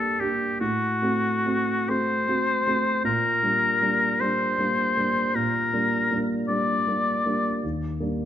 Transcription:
Already playing: grand piano G2 A#3 D4 G4, oboe A4
0.20 grand piano A#3 D4 G4, oboe G4
0.60 grand piano A2, oboe F#4
1.02 grand piano A3 C4 F#4
1.46 grand piano A3 C4 F#4
1.88 grand piano A3 C4 F#4, oboe C5
2.28 grand piano A3 C4 F#4
2.67 grand piano A3 C4 F#4
3.04 grand piano A#2, oboe A#4
3.43 grand piano G3 A#3 D4
3.81 grand piano G3 A#3 D4
4.20 grand piano G3 A#3 D4, oboe C5
4.58 grand piano G3 A#3 D4
4.97 grand piano G3 A#3 D4
5.35 grand piano A#2, oboe A#4
5.73 grand piano G3 A#3 D4
6.11 grand piano G3 A#3 D4
6.48 grand piano G3 A#3 D4, oboe D5
6.87 grand piano G3 A#3 D4
7.25 grand piano G3 A#3 D4
7.63 grand piano D#2
8.00 grand piano G3 A#3 D4

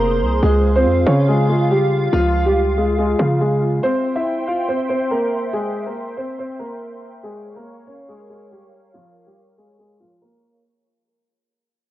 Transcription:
Already playing: 808-style bass F1, grand piano A#3 A#4, analog synth pad G#4 C5 C6
0.21 808-style bass C2
0.43 808-style bass C#2, grand piano G#3 G#4, analog synth pad F4 F5
0.76 grand piano C4 C5
0.85 808-style bass F2
1.06 808-style bass C#3, grand piano C#4 C#5
1.28 grand piano G#3 G#4
1.49 grand piano G#3 G#4
1.71 grand piano G3 G4
2.13 808-style bass C#2, grand piano F3 F4
2.46 grand piano G3 G4
2.77 grand piano G#3 G#4
2.98 grand piano G#3 G#4
3.19 808-style bass C#3, grand piano F3 F4
3.41 grand piano G#3 G#4
3.83 grand piano C4 C5, analog synth pad C5 E5 G5 C6
4.16 grand piano E4 E5
4.47 grand piano F4 F5
4.68 grand piano C4 C5
4.89 grand piano C4 C5
5.11 grand piano A#3 A#4
5.53 grand piano G#3 G#4
5.86 grand piano A#3 A#4
6.17 grand piano C4 C5
6.39 grand piano C4 C5
6.59 grand piano A#3 A#4
7.23 grand piano G#3 G#4, analog synth pad A#4 C#5 F5 C#6
7.56 grand piano A#3 A#4
7.87 grand piano C#4 C#5
8.09 grand piano G#3 G#4
8.30 grand piano G#3 G#4
8.51 grand piano G3 G4
8.94 grand piano F3 F4
9.27 grand piano G3 G4
9.58 grand piano G#3 G#4
9.79 grand piano G#3 G#4
10.00 grand piano F3 F4
10.22 grand piano A#3 A#4

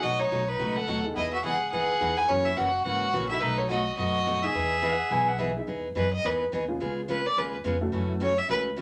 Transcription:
0.02 upright bass B1, steel-string acoustic guitar B2 F#3 A3 D#4 F#4, fiddle F#4 D#5
0.19 fiddle D#4 C#5
0.31 upright bass B1, steel-string acoustic guitar B2 F#3 A3 D#4 F#4
0.48 fiddle D#4 B4
0.59 upright bass C#2, steel-string acoustic guitar B2 F#3 A3 D#4 F#4
0.76 fiddle A4 F#5
0.87 upright bass D#2, steel-string acoustic guitar B2 F#3 A3 D#4 F#4
1.04 honky-tonk piano B3 D#4 E4 G#4
1.15 upright bass E2, steel-string acoustic guitar E3 B3 D#4 G#4, fiddle E4 D#5
1.33 fiddle F#4 E5
1.43 upright bass C#2, steel-string acoustic guitar E3 B3 D#4 G#4, fiddle G#4 F#5
1.72 upright bass D#2, steel-string acoustic guitar E3 B3 D#4 G#4, fiddle G#4 F#5
2.00 upright bass E2, steel-string acoustic guitar E3 B3 D#4 G#4, honky-tonk piano B3 D#4 E4 G#4
2.17 fiddle B4 G#5
2.28 upright bass F#2, steel-string acoustic guitar C#3 E3 A#3 C#4 F#4, fiddle C#4 C#5
2.46 fiddle E4 E5
2.56 upright bass F#1, steel-string acoustic guitar C#3 E3 A#3 C#4 F#4, fiddle F#4 F#5
2.84 upright bass G#1, steel-string acoustic guitar C#3 E3 A#3 C#4 F#4, fiddle F#4 F#5
3.13 upright bass A#1, steel-string acoustic guitar C#3 E3 A#3 C#4 F#4
3.29 honky-tonk piano B3 D#4 F#4 A4, fiddle E4 E5
3.41 upright bass B1, steel-string acoustic guitar B2 F#3 A3 D#4 F#4, fiddle D#4 B4
3.58 fiddle D#4 C#5
3.69 steel-string acoustic guitar B2 F#3 A3 D#4 F#4, fiddle F#4 D#5
3.97 upright bass F#2, steel-string acoustic guitar B2 F#3 A3 D#4 F#4, fiddle F#4 D#5
4.26 steel-string acoustic guitar B2 F#3 A3 D#4 F#4
4.43 honky-tonk piano B3 D#4 E4 G#4, fiddle G#4 E5
4.54 upright bass E2, steel-string acoustic guitar E3 B3 D#4 G#4
4.82 steel-string acoustic guitar E3 B3 D#4 G#4, electric slide guitar F#5
5.10 upright bass B1, steel-string acoustic guitar E3 B3 D#4 G#4, electric slide guitar G#5
5.28 electric slide guitar F#5
5.38 steel-string acoustic guitar E3 B3 D#4 G#4, electric slide guitar E5
5.56 honky-tonk piano B3 D#4 E4 G#4
5.67 upright bass E2, steel-string acoustic guitar E3 B3 D#4 G#4
5.95 upright bass F#2, steel-string acoustic guitar E3 B3 D#4 G#4, fiddle B4
6.13 fiddle D#5
6.24 upright bass E2, steel-string acoustic guitar E3 B3 D#4 G#4, fiddle B4
6.52 upright bass D#2, steel-string acoustic guitar E3 B3 D#4 G#4
6.68 honky-tonk piano G#3 B3 C#4 F4 G#4
6.80 upright bass C#2, steel-string acoustic guitar C#3 G#3 B3 F4 G#4
7.08 steel-string acoustic guitar C#3 G#3 B3 F4 G#4, fiddle B4
7.26 fiddle D5
7.37 upright bass D#2, steel-string acoustic guitar C#3 G#3 B3 F4 G#4, fiddle B4
7.64 upright bass F2, steel-string acoustic guitar C#3 G#3 B3 F4 G#4
7.81 honky-tonk piano A3 C#4 E4 F#4 A4
7.92 upright bass F#2, steel-string acoustic guitar C#3 E3 A3 C#4 F#4
8.20 steel-string acoustic guitar C#3 E3 A3 C#4 F#4, fiddle C#5
8.38 fiddle E5
8.48 upright bass C#2, steel-string acoustic guitar C#3 E3 A3 C#4 F#4, fiddle B4
8.76 steel-string acoustic guitar C#3 E3 A3 C#4 F#4

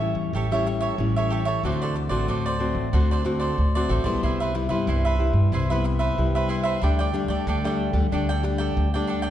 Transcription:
Already playing: upright bass A1, nylon-string guitar E3, cavaquinho A4 C#5 E5
0.01 nylon-string guitar G3 C#4 E4
0.15 upright bass E2
0.33 upright bass A1, nylon-string guitar A2, cavaquinho G4 A4 C#5 E5
0.52 nylon-string guitar G3 C#4 E4, cavaquinho A4 C#5 E5
0.66 muted cavaquinho stroke
0.81 cavaquinho A4 C#5 E5
0.98 upright bass A1, nylon-string guitar E3 G3 C#4 E4
1.16 cavaquinho A4 C#5 E5
1.30 cavaquinho G4 A4 C#5 E5
1.45 cavaquinho A4 C#5 E5
1.63 upright bass D2, nylon-string guitar D3 A3 C4 F#4, cavaquinho F#4 A4 C5 D5
1.82 cavaquinho A4 C5 D5
1.95 muted cavaquinho stroke
2.09 upright bass A1, nylon-string guitar A3 C4 F#4, cavaquinho A4 C5 D5
2.28 upright bass D2, nylon-string guitar A2, cavaquinho F#4 A4 C5 D5
2.46 cavaquinho A4 C5 D5
2.60 nylon-string guitar A3 C4 F#4
2.75 upright bass A1
2.93 upright bass D2, nylon-string guitar D3 A3 C4 F#4, cavaquinho F#4 A4 C5 D5
3.11 cavaquinho A4 C5 D5
3.25 nylon-string guitar A3 C4 F#4, muted cavaquinho stroke
3.40 cavaquinho A4 C5 D5
3.58 upright bass D2, nylon-string guitar A2
3.75 nylon-string guitar A3 C4 F#4, cavaquinho A4 C5 D5
3.89 upright bass A1, cavaquinho F#4 A4 C5 D5
4.04 upright bass B1, nylon-string guitar G3 B3 E4, cavaquinho A4 C5 D5
4.23 upright bass C2, nylon-string guitar C3, cavaquinho E4 B4 C5 E5
4.40 cavaquinho B4 C5 E5
4.55 nylon-string guitar G3 B3 E4, muted cavaquinho stroke
4.69 upright bass G2, nylon-string guitar G3 B3 E4, cavaquinho B4 C5 E5
4.87 upright bass C2, nylon-string guitar G2, cavaquinho E4 B4 C5 E5
5.05 cavaquinho B4 C5 E5
5.19 nylon-string guitar G3 E4
5.33 upright bass G2
5.52 upright bass C2, nylon-string guitar C3, cavaquinho E4 B4 C5 E5
5.70 nylon-string guitar G3 B3 E4, cavaquinho B4 C5 E5
5.84 muted cavaquinho stroke
5.99 cavaquinho B4 C5 E5
6.18 upright bass C2, nylon-string guitar G2 G3 B3 E4
6.35 cavaquinho B4 C5 E5
6.49 cavaquinho E4 B4 C5 E5
6.63 cavaquinho B4 C5 E5
6.82 upright bass D2, nylon-string guitar D3 G3 A3 D4, cavaquinho D4 A4 D5 G5
6.99 cavaquinho A4 D5 G5
7.13 nylon-string guitar G3 A3 D4, muted cavaquinho stroke
7.28 upright bass D2, cavaquinho A4 D5 G5
7.47 upright bass D2, nylon-string guitar D3, cavaquinho D4 A4 D5 G5
7.64 nylon-string guitar G3 A3 D4, cavaquinho A4 D5 G5
7.93 upright bass D2, nylon-string guitar G3 A3 D4
8.12 upright bass D2, nylon-string guitar D3 G3 A3 D4, cavaquinho D4 A4 D5 G5
8.29 cavaquinho A4 D5 G5
8.43 nylon-string guitar G3 A3 D4, muted cavaquinho stroke
8.58 cavaquinho A4 D5 G5
8.77 upright bass D2, nylon-string guitar D3
8.94 nylon-string guitar G3 A3 D4, cavaquinho A4 D5 G5
9.07 cavaquinho D4 A4 D5 G5
9.22 cavaquinho A4 D5 G5

